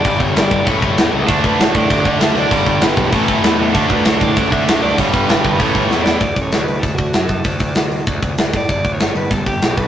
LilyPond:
<<
  \new Staff \with { instrumentName = "Overdriven electric guitar" } { \time 4/4 \key d \major \tempo 4 = 194 d''8 cis''8 d''4 cis''4 r4 | a'8 b'8 cis''8 d''4 e''4 d''8~ | d''8 d''8 b'4 a'4 r4 | a'8 b'8 cis''8 d''4 e''4 d''8 |
cis''8 b'8 b'4 cis''4 r8 d''8 | d''8. cis''8. b'8 a'8 fis'4 a'8~ | a'4. r2 d''8 | d''8. cis''8. b'8 a'8 g'4 b'8 | }
  \new Staff \with { instrumentName = "Distorted electric guitar" } { \clef bass \time 4/4 \key d \major r1 | <d a d'>2.~ <d a d'>8 <d a d'>8 | <g, d g>2 <a, e a>2 | <d a d'>2.~ <d a d'>8 <d a d'>8 |
<g, d g>2 <a, e a>2 | r1 | r1 | r1 | }
  \new Staff \with { instrumentName = "Overdriven electric guitar" } { \clef bass \time 4/4 \key d \major <g, d g>2 <a, e a>2 | <d a d'>2~ <d a d'>8 <d a d'>8 <d a d'>4 | <g, d g>2 <a, e a>2 | <d a d'>2~ <d a d'>8 <d a d'>8 <d a d'>4 |
<g, d g>2 <a, e a>2 | r1 | r1 | r1 | }
  \new Staff \with { instrumentName = "Distorted electric guitar" } { \clef bass \time 4/4 \key d \major <g, d g>8 <g, d g>8 <g, d g>8 <g, d g>8 <a, e a>8 <a, e a>8 <a, e a>8 <a, e a>8 | <d a d'>8 <d a d'>8 <d a d'>8 <d a d'>8 <d a d'>8 <d a d'>8 <d a d'>8 <d a d'>8 | <g, d g>8 <g, d g>8 <g, d g>8 <g, d g>8 <a, e a>8 <a, e a>8 <a, e a>8 <a, e a>8 | <d a d'>8 <d a d'>8 <d a d'>8 <d a d'>8 <d a d'>8 <d a d'>8 <d a d'>8 <d a d'>8 |
<g, d g>8 <g, d g>8 <g, d g>8 <g, d g>8 <a, e a>8 <a, e a>8 <a, e a>8 <a, e a>8 | r1 | r1 | r1 | }
  \new Staff \with { instrumentName = "Picked electric bass" } { \clef bass \time 4/4 \key d \major g,,8 g,,8 g,,8 g,,8 a,,8 g,,8 e,8 cis,8 | d,8 d,8 d,8 a,8 a,,8 d8 d,8 d,8 | g,,8 g,,8 g,,8 b,,8 a,,8 g,,8 e,8 e,8 | d,8 d,8 d,8 a,8 a,,8 d8 d,8 d,8 |
g,,8 g,,8 g,,8 g,,8 a,,8 g,,8 e,8 e,8 | d,8 a,,8 d,8 d,8 d,8 d,8 fis,4 | d,8 d,8 d,4 d,8 d,8 d,8 a,8 | g,,8 d,8 g,,8 g,,8 g,,8 g,,8 b,,4 | }
  \new DrumStaff \with { instrumentName = "Drums" } \drummode { \time 4/4 <cymc bd>8 bd8 <cymc sn>8 bd8 <cymc bd>8 bd8 <cymc sn>4 | <cymc bd>8 bd8 <cymc sn>8 bd8 <cymc bd>8 bd8 <cymc sn>4 | <cymc bd>8 bd8 <cymc sn>8 bd8 <cymc bd>8 bd8 <cymc sn>4 | <cymc bd>8 bd8 <cymc sn>8 bd8 <cymc bd>8 bd8 <cymc sn>4 |
<cymc bd>8 bd8 <cymc sn>8 bd8 <cymc bd>8 bd8 sn8 sn8 | <hho bd>8 <hho bd>8 <hho sn>8 hho8 <hho bd>8 <hho bd>8 <hho sn>8 <hho bd>8 | <hho bd>8 <hho bd>8 <hho sn>8 hho8 <hho bd>8 <hho bd>8 <hho sn>8 <hho bd>8 | <hho bd>8 <hho bd>8 <hho sn>8 hho8 <hho bd>8 <hho bd>8 <hho sn>8 <hho bd>8 | }
>>